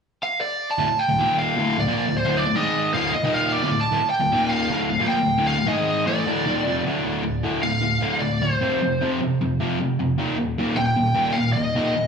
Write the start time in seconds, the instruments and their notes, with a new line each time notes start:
0.23 lead electric guitar F5
0.41 lead electric guitar D5
0.71 lead electric guitar A5
0.78 overdriven electric guitar D2 A2
0.89 muted overdriven electric guitar stroke
0.99 lead electric guitar G5
1.09 overdriven electric guitar D2 A2
1.19 overdriven electric guitar D#2 A#2 D#3
1.39 lead electric guitar F5
1.57 overdriven electric guitar D2 A2 D3
1.78 overdriven electric guitar D2 A2, lead electric guitar D5
1.87 overdriven electric guitar A#2 F3 A#3
2.07 overdriven electric guitar D2 A2
2.17 lead electric guitar C5
2.25 overdriven electric guitar D2 A2 D3
2.37 lead electric guitar D5
2.46 overdriven electric guitar D2 A2
2.55 overdriven electric guitar G#2 D#3 G#3, lead electric guitar D#5
2.94 overdriven electric guitar D2 A2 D3, lead electric guitar F5
3.14 lead electric guitar D#5, muted overdriven electric guitar stroke
3.24 overdriven electric guitar D#2 A#2 D#3
3.34 lead electric guitar F5
3.52 lead electric guitar D5
3.63 overdriven electric guitar D2 A2
3.71 overdriven electric guitar D2 A2
3.81 lead electric guitar A5
3.92 overdriven electric guitar D2 A2
4.03 muted overdriven electric guitar stroke
4.10 lead electric guitar G5
4.20 overdriven electric guitar D2 A2
4.32 overdriven electric guitar D#2 A#2 D#3
4.49 lead electric guitar F5
4.70 overdriven electric guitar D2 A2 D3
4.89 overdriven electric guitar D2 A2
4.99 overdriven electric guitar A#2 F3 A#3
5.07 lead electric guitar G5
5.19 overdriven electric guitar D2 A2
5.38 overdriven electric guitar D2 A2 D3
5.47 lead electric guitar F5
5.57 overdriven electric guitar D2 A2
5.67 overdriven electric guitar G#2 D#3 G#3, lead electric guitar D#5
6.07 overdriven electric guitar A2 E3 A3, lead electric guitar D5
6.26 overdriven electric guitar D2 A2 D3
6.46 overdriven electric guitar D#2 A#2 D#3
6.65 overdriven electric guitar F2 C3 F3
6.85 overdriven electric guitar D2 A2 D3
7.04 overdriven electric guitar D2 A2 D3
7.23 overdriven electric guitar D2 A2
7.43 overdriven electric guitar D2 A2 D3
7.63 overdriven electric guitar D2 A2, lead electric guitar F5
7.72 lead electric guitar F5
7.82 overdriven electric guitar D2 A2
8.01 overdriven electric guitar D2 A2 D3
8.19 overdriven electric guitar D2 A2, lead electric guitar D5
8.38 overdriven electric guitar D2 A2, lead electric guitar C5
8.61 overdriven electric guitar F2 C3 F3
8.82 overdriven electric guitar F2 C3
9.01 overdriven electric guitar F2 C3 F3
9.21 overdriven electric guitar F2 C3
9.41 overdriven electric guitar F2 C3
9.60 overdriven electric guitar F2 C3 F3
9.80 overdriven electric guitar F2 C3
9.99 overdriven electric guitar F2 C3
10.18 overdriven electric guitar D#2 A#2 D#3
10.37 overdriven electric guitar D#2 A#2
10.58 overdriven electric guitar D#2 A#2 D#3
10.77 overdriven electric guitar D#2 A#2, lead electric guitar G5
10.86 lead electric guitar G5
10.96 overdriven electric guitar D#2 A#2
11.14 overdriven electric guitar D#2 A#2 D#3
11.33 overdriven electric guitar D#2 A#2, lead electric guitar F5
11.53 overdriven electric guitar D#2 A#2, lead electric guitar D#5
11.75 overdriven electric guitar D#2 A#2 D#3
11.95 overdriven electric guitar D#2 A#2